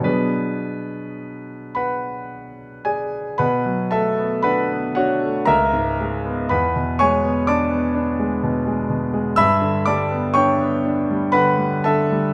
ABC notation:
X:1
M:3/4
L:1/16
Q:1/4=59
K:Bm
V:1 name="Grand piano"
B6 [Bfb]4 [^Gd^g]2 | [Bfb]2 [Aea]2 [Bfb]2 [Fcf]2 [^Ae^a]4 | [Bfb]2 [c^gc']2 [dad']2 z6 | [ebe']2 [dad']2 [cgc']4 [Bfb]2 [Aea]2 |]
V:2 name="Grand piano" clef=bass
[B,,F,B,D^G]12 | B,, F, A, B, D B, D A, C,, ^G,, ^G, B, | E,, B,, ^G, B, D B, D G, B,, G, B,, G, | G,, D, G, B, D B, D G, D, G, D, G, |]